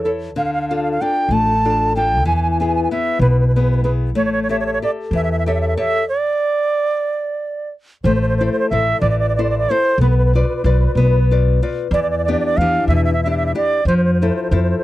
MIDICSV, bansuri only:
0, 0, Header, 1, 2, 480
1, 0, Start_track
1, 0, Tempo, 636943
1, 255, Time_signature, 6, 3, 24, 8
1, 4095, Tempo, 647948
1, 11061, End_track
2, 0, Start_track
2, 0, Title_t, "Bansuri"
2, 0, Program_c, 0, 73
2, 23, Note_on_c, 0, 69, 55
2, 63, Note_off_c, 0, 69, 0
2, 283, Note_on_c, 0, 77, 86
2, 327, Note_off_c, 0, 77, 0
2, 337, Note_on_c, 0, 77, 54
2, 384, Note_off_c, 0, 77, 0
2, 401, Note_on_c, 0, 77, 74
2, 447, Note_off_c, 0, 77, 0
2, 463, Note_on_c, 0, 77, 51
2, 509, Note_off_c, 0, 77, 0
2, 513, Note_on_c, 0, 77, 59
2, 559, Note_off_c, 0, 77, 0
2, 572, Note_on_c, 0, 77, 57
2, 615, Note_off_c, 0, 77, 0
2, 625, Note_on_c, 0, 77, 60
2, 669, Note_off_c, 0, 77, 0
2, 691, Note_on_c, 0, 77, 59
2, 764, Note_on_c, 0, 79, 78
2, 775, Note_off_c, 0, 77, 0
2, 1000, Note_on_c, 0, 81, 85
2, 1011, Note_off_c, 0, 79, 0
2, 1475, Note_off_c, 0, 81, 0
2, 1480, Note_on_c, 0, 79, 83
2, 1686, Note_off_c, 0, 79, 0
2, 1712, Note_on_c, 0, 80, 79
2, 1760, Note_off_c, 0, 80, 0
2, 1778, Note_on_c, 0, 80, 67
2, 1821, Note_off_c, 0, 80, 0
2, 1825, Note_on_c, 0, 80, 69
2, 1878, Note_off_c, 0, 80, 0
2, 1890, Note_on_c, 0, 80, 50
2, 1941, Note_off_c, 0, 80, 0
2, 1958, Note_on_c, 0, 80, 66
2, 2001, Note_off_c, 0, 80, 0
2, 2015, Note_on_c, 0, 80, 64
2, 2056, Note_off_c, 0, 80, 0
2, 2071, Note_on_c, 0, 80, 64
2, 2111, Note_off_c, 0, 80, 0
2, 2137, Note_on_c, 0, 80, 62
2, 2172, Note_off_c, 0, 80, 0
2, 2195, Note_on_c, 0, 76, 73
2, 2402, Note_off_c, 0, 76, 0
2, 2421, Note_on_c, 0, 71, 77
2, 2474, Note_off_c, 0, 71, 0
2, 2488, Note_on_c, 0, 71, 52
2, 2538, Note_off_c, 0, 71, 0
2, 2561, Note_on_c, 0, 71, 53
2, 2605, Note_off_c, 0, 71, 0
2, 2618, Note_on_c, 0, 71, 45
2, 2665, Note_off_c, 0, 71, 0
2, 2678, Note_on_c, 0, 71, 49
2, 2720, Note_off_c, 0, 71, 0
2, 2733, Note_on_c, 0, 71, 45
2, 2774, Note_off_c, 0, 71, 0
2, 2796, Note_on_c, 0, 71, 47
2, 2833, Note_off_c, 0, 71, 0
2, 2838, Note_on_c, 0, 71, 45
2, 2881, Note_off_c, 0, 71, 0
2, 2887, Note_on_c, 0, 71, 54
2, 2932, Note_off_c, 0, 71, 0
2, 3137, Note_on_c, 0, 73, 81
2, 3192, Note_off_c, 0, 73, 0
2, 3204, Note_on_c, 0, 73, 59
2, 3253, Note_off_c, 0, 73, 0
2, 3257, Note_on_c, 0, 73, 62
2, 3313, Note_off_c, 0, 73, 0
2, 3338, Note_on_c, 0, 73, 54
2, 3385, Note_off_c, 0, 73, 0
2, 3394, Note_on_c, 0, 73, 65
2, 3439, Note_off_c, 0, 73, 0
2, 3468, Note_on_c, 0, 73, 54
2, 3503, Note_off_c, 0, 73, 0
2, 3512, Note_on_c, 0, 73, 68
2, 3552, Note_off_c, 0, 73, 0
2, 3566, Note_on_c, 0, 73, 58
2, 3606, Note_off_c, 0, 73, 0
2, 3647, Note_on_c, 0, 74, 76
2, 3697, Note_off_c, 0, 74, 0
2, 3885, Note_on_c, 0, 76, 83
2, 3928, Note_off_c, 0, 76, 0
2, 3947, Note_on_c, 0, 76, 61
2, 3990, Note_off_c, 0, 76, 0
2, 4006, Note_on_c, 0, 76, 72
2, 4051, Note_off_c, 0, 76, 0
2, 4061, Note_on_c, 0, 76, 62
2, 4109, Note_off_c, 0, 76, 0
2, 4119, Note_on_c, 0, 76, 65
2, 4163, Note_off_c, 0, 76, 0
2, 4177, Note_on_c, 0, 76, 51
2, 4218, Note_off_c, 0, 76, 0
2, 4226, Note_on_c, 0, 76, 58
2, 4270, Note_off_c, 0, 76, 0
2, 4277, Note_on_c, 0, 76, 49
2, 4322, Note_off_c, 0, 76, 0
2, 4360, Note_on_c, 0, 76, 90
2, 4567, Note_off_c, 0, 76, 0
2, 4582, Note_on_c, 0, 74, 77
2, 5771, Note_off_c, 0, 74, 0
2, 6028, Note_on_c, 0, 72, 76
2, 6086, Note_off_c, 0, 72, 0
2, 6108, Note_on_c, 0, 72, 60
2, 6149, Note_off_c, 0, 72, 0
2, 6153, Note_on_c, 0, 72, 67
2, 6204, Note_off_c, 0, 72, 0
2, 6208, Note_on_c, 0, 72, 49
2, 6268, Note_off_c, 0, 72, 0
2, 6271, Note_on_c, 0, 72, 65
2, 6326, Note_off_c, 0, 72, 0
2, 6335, Note_on_c, 0, 72, 58
2, 6377, Note_off_c, 0, 72, 0
2, 6382, Note_on_c, 0, 72, 70
2, 6430, Note_off_c, 0, 72, 0
2, 6434, Note_on_c, 0, 72, 59
2, 6488, Note_off_c, 0, 72, 0
2, 6514, Note_on_c, 0, 76, 83
2, 6731, Note_off_c, 0, 76, 0
2, 6745, Note_on_c, 0, 74, 81
2, 6804, Note_off_c, 0, 74, 0
2, 6813, Note_on_c, 0, 74, 54
2, 6869, Note_off_c, 0, 74, 0
2, 6880, Note_on_c, 0, 74, 65
2, 6933, Note_off_c, 0, 74, 0
2, 6949, Note_on_c, 0, 74, 58
2, 6996, Note_off_c, 0, 74, 0
2, 7000, Note_on_c, 0, 74, 65
2, 7050, Note_off_c, 0, 74, 0
2, 7058, Note_on_c, 0, 74, 54
2, 7101, Note_off_c, 0, 74, 0
2, 7106, Note_on_c, 0, 74, 61
2, 7156, Note_off_c, 0, 74, 0
2, 7168, Note_on_c, 0, 74, 64
2, 7255, Note_on_c, 0, 72, 79
2, 7266, Note_off_c, 0, 74, 0
2, 7476, Note_off_c, 0, 72, 0
2, 7491, Note_on_c, 0, 71, 65
2, 7537, Note_off_c, 0, 71, 0
2, 7552, Note_on_c, 0, 71, 48
2, 7598, Note_off_c, 0, 71, 0
2, 7608, Note_on_c, 0, 71, 61
2, 7657, Note_off_c, 0, 71, 0
2, 7663, Note_on_c, 0, 71, 43
2, 7715, Note_off_c, 0, 71, 0
2, 7739, Note_on_c, 0, 71, 44
2, 7778, Note_off_c, 0, 71, 0
2, 7794, Note_on_c, 0, 71, 42
2, 7832, Note_off_c, 0, 71, 0
2, 7836, Note_on_c, 0, 71, 47
2, 7880, Note_off_c, 0, 71, 0
2, 7893, Note_on_c, 0, 71, 44
2, 7935, Note_off_c, 0, 71, 0
2, 7958, Note_on_c, 0, 71, 51
2, 7995, Note_off_c, 0, 71, 0
2, 8012, Note_on_c, 0, 71, 40
2, 8049, Note_off_c, 0, 71, 0
2, 8067, Note_on_c, 0, 71, 54
2, 8103, Note_off_c, 0, 71, 0
2, 8118, Note_on_c, 0, 71, 43
2, 8156, Note_off_c, 0, 71, 0
2, 8180, Note_on_c, 0, 71, 53
2, 8216, Note_off_c, 0, 71, 0
2, 8235, Note_on_c, 0, 71, 48
2, 8276, Note_off_c, 0, 71, 0
2, 8290, Note_on_c, 0, 71, 53
2, 8334, Note_off_c, 0, 71, 0
2, 8357, Note_on_c, 0, 71, 51
2, 8398, Note_off_c, 0, 71, 0
2, 8907, Note_on_c, 0, 74, 83
2, 8958, Note_off_c, 0, 74, 0
2, 8979, Note_on_c, 0, 74, 63
2, 9025, Note_off_c, 0, 74, 0
2, 9037, Note_on_c, 0, 74, 67
2, 9085, Note_off_c, 0, 74, 0
2, 9092, Note_on_c, 0, 74, 61
2, 9136, Note_off_c, 0, 74, 0
2, 9141, Note_on_c, 0, 74, 64
2, 9192, Note_off_c, 0, 74, 0
2, 9197, Note_on_c, 0, 74, 65
2, 9246, Note_off_c, 0, 74, 0
2, 9254, Note_on_c, 0, 74, 66
2, 9292, Note_off_c, 0, 74, 0
2, 9296, Note_on_c, 0, 74, 77
2, 9383, Note_on_c, 0, 77, 90
2, 9395, Note_off_c, 0, 74, 0
2, 9606, Note_off_c, 0, 77, 0
2, 9611, Note_on_c, 0, 76, 85
2, 9661, Note_off_c, 0, 76, 0
2, 9665, Note_on_c, 0, 76, 66
2, 9726, Note_off_c, 0, 76, 0
2, 9732, Note_on_c, 0, 76, 78
2, 9790, Note_off_c, 0, 76, 0
2, 9799, Note_on_c, 0, 76, 64
2, 9854, Note_off_c, 0, 76, 0
2, 9872, Note_on_c, 0, 76, 66
2, 9917, Note_off_c, 0, 76, 0
2, 9925, Note_on_c, 0, 76, 53
2, 9970, Note_off_c, 0, 76, 0
2, 9976, Note_on_c, 0, 76, 61
2, 10023, Note_off_c, 0, 76, 0
2, 10040, Note_on_c, 0, 76, 51
2, 10082, Note_off_c, 0, 76, 0
2, 10120, Note_on_c, 0, 74, 80
2, 10327, Note_off_c, 0, 74, 0
2, 10347, Note_on_c, 0, 72, 67
2, 10398, Note_off_c, 0, 72, 0
2, 10420, Note_on_c, 0, 72, 48
2, 10465, Note_off_c, 0, 72, 0
2, 10472, Note_on_c, 0, 72, 52
2, 10522, Note_off_c, 0, 72, 0
2, 10543, Note_on_c, 0, 72, 40
2, 10589, Note_off_c, 0, 72, 0
2, 10593, Note_on_c, 0, 72, 48
2, 10639, Note_off_c, 0, 72, 0
2, 10655, Note_on_c, 0, 72, 41
2, 10697, Note_off_c, 0, 72, 0
2, 10704, Note_on_c, 0, 72, 47
2, 10749, Note_off_c, 0, 72, 0
2, 10758, Note_on_c, 0, 72, 42
2, 10803, Note_off_c, 0, 72, 0
2, 10813, Note_on_c, 0, 72, 48
2, 10846, Note_off_c, 0, 72, 0
2, 10850, Note_on_c, 0, 72, 43
2, 10903, Note_off_c, 0, 72, 0
2, 10907, Note_on_c, 0, 72, 48
2, 10956, Note_off_c, 0, 72, 0
2, 10961, Note_on_c, 0, 72, 43
2, 11013, Note_off_c, 0, 72, 0
2, 11021, Note_on_c, 0, 72, 51
2, 11061, Note_off_c, 0, 72, 0
2, 11061, End_track
0, 0, End_of_file